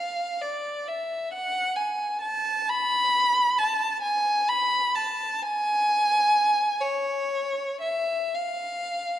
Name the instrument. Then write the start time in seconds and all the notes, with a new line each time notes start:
violin
Already playing: F5
0.42 D5
0.88 E5
1.33 F#5
1.76 G#5
2.21 A5
2.69 B5
3.58 A5
4.02 G#5
4.49 B5
4.96 A5
5.43 G#5
6.81 C#5
7.81 E5
8.35 F5